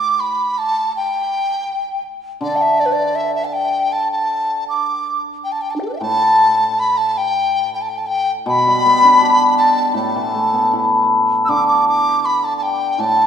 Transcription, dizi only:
0.00 0.21 D6 medium
0.20 0.60 B5 medium
0.58 0.95 A5 medium
0.96 2.03 G5 medium
2.43 2.57 D5 medium
2.56 2.63 G5 soft
2.61 2.81 E5 medium
2.80 2.87 D5 medium
2.86 2.94 B4 medium
2.93 3.17 D5 medium
3.16 3.34 E5 medium
3.35 3.46 E5 medium
3.45 3.54 A5 medium
3.53 3.94 G5 medium
3.92 4.11 A5 medium
4.12 4.64 A5 medium
4.69 5.22 D6 medium
5.44 5.53 G5 medium
5.52 5.63 A5 medium
5.62 5.72 G5 medium
5.70 5.75 A5 medium
5.76 5.78 D4 soft
5.76 5.82 G5 medium
5.82 5.84 G4 soft
5.82 5.89 A4 soft
5.89 5.93 B4 soft
5.93 5.96 D5 medium
5.93 5.99 E5 medium
5.99 6.02 G5 medium
5.99 6.81 A5 medium
6.79 6.99 B5 loud
6.97 7.19 A5 medium
7.17 7.73 G5 medium
7.74 7.83 G5 medium
7.82 7.91 A5 medium
7.89 7.99 G5 medium
7.98 8.08 A5 medium
8.07 8.30 G5 medium
8.49 9.55 B5 loud
9.58 9.93 A5 medium
9.96 11.07 A5 medium
11.45 11.51 E6 medium
11.49 11.67 D6 medium
11.68 11.86 D6 medium
11.88 12.27 D6 medium
12.25 12.46 B5 medium
12.44 12.56 A5 medium
12.58 12.64 A5 medium
12.63 13.02 G5 medium
13.00 13.27 A5 medium

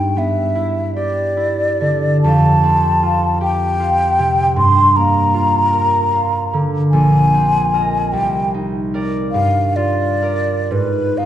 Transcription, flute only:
0.00 0.20 G5 medium
0.18 0.94 E5 soft
0.95 2.21 D5 medium
2.22 3.39 A5 medium
3.42 4.57 G5 medium
4.58 4.98 C6 medium
4.96 6.65 A#5 medium
6.91 8.14 G#5 medium
8.12 8.52 G5 medium
9.32 9.78 F5 medium
9.76 10.74 D5 medium
10.72 11.19 B4 medium
11.18 11.26 F5 medium

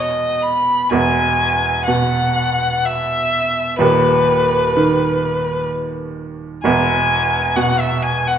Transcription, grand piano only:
0.00 0.87 E1 medium
0.00 0.87 E2 medium
0.00 0.91 B2 medium
0.91 3.76 E1 medium
0.91 3.76 E2 medium
1.88 3.80 B2 medium
3.79 6.60 D#1 medium
3.79 6.60 D#2 medium
4.77 6.65 D#3 medium
6.64 8.39 E1 medium
6.64 8.39 E2 medium
7.56 8.39 B2 medium

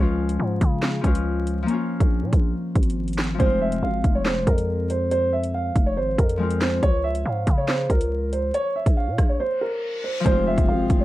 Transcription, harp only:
0.00 1.00 F3 medium
0.00 1.02 G#3 medium
0.00 1.05 C#4 medium
0.00 1.06 F4 medium
1.01 1.61 F3 medium
1.01 1.73 G#3 soft
1.01 1.70 C#4 soft
1.07 1.73 F4 medium
1.63 3.33 F3 medium
1.63 4.88 A#3 medium
1.70 3.48 C#4 medium
1.70 3.45 F4 medium
3.34 6.36 F3 medium
3.34 6.38 G#3 medium
3.42 6.41 C4 medium
3.42 6.39 F4 medium
6.37 6.88 F3 soft
6.37 6.88 G#3 soft
6.37 6.83 C4 soft
6.43 6.84 F4 medium
10.20 11.05 F3 medium
10.20 11.05 G#3 medium
10.28 11.05 C4 medium
10.28 11.05 F4 medium

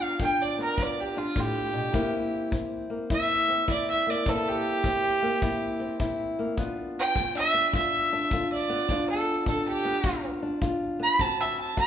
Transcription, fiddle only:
0.02 0.20 F5 medium
0.21 0.44 G5 medium
0.42 0.59 D5 medium
0.63 0.84 A#4 medium
0.82 1.02 D5 medium
1.00 1.20 G4 medium
1.18 1.41 F4 medium
1.40 2.50 G4 loud
3.12 3.68 E5 medium
3.71 3.88 D5 medium
3.91 4.12 E5 medium
4.10 4.31 D5 medium
4.29 4.49 A4 medium
4.48 6.16 G4 loud
6.99 7.35 G5 loud
7.39 7.74 E5 loud
7.76 8.50 E5 medium
8.53 9.08 D5 medium
9.10 9.47 A4 medium
9.48 9.66 A4 medium
9.68 10.23 G4 loud
11.04 11.23 B5 loud
11.21 11.42 A5 loud
11.41 11.59 E5 medium
11.60 11.78 A5 medium
11.79 11.87 B5 loud

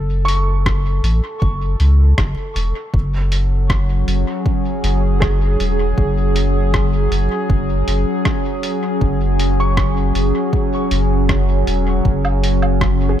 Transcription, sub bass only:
0.00 1.00 F#1 loud
1.03 1.21 A1 medium
1.42 1.75 F#1 loud
1.80 2.13 C#2 medium
2.18 2.35 F#1 medium
2.56 2.73 E1 loud
2.94 4.04 F#1 loud
4.07 4.25 F#1 medium
4.84 5.56 F#1 loud
5.60 5.93 E1 loud
5.98 7.08 F#1 loud
7.11 7.28 F#1 medium
7.49 7.83 F#1 loud
7.88 8.05 F#1 medium
9.01 10.12 F#1 loud
10.15 10.32 F#1 medium
10.91 11.64 F#1 loud
11.67 12.01 E1 loud
12.05 13.16 F#1 loud

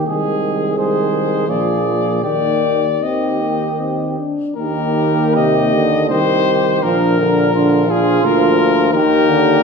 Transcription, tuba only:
0.07 1.45 C2 medium
1.49 2.26 A#1 soft
2.24 4.23 D#2 soft
4.57 6.12 D#2 medium
6.10 6.82 C2 medium
6.83 8.22 A#1 medium
8.23 8.95 D2 medium
8.94 9.63 D#2 medium

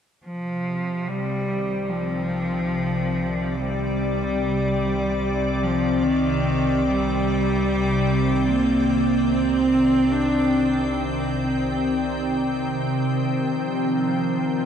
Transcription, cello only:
0.25 1.10 F3 medium
1.09 1.91 G3 medium
1.90 3.57 F3 medium
3.55 5.64 G3 medium
5.63 6.05 F3 medium
6.03 6.86 D#3 medium
6.87 8.49 G3 medium
8.48 9.33 A#3 medium
9.32 10.14 C4 medium
10.12 10.98 D4 medium

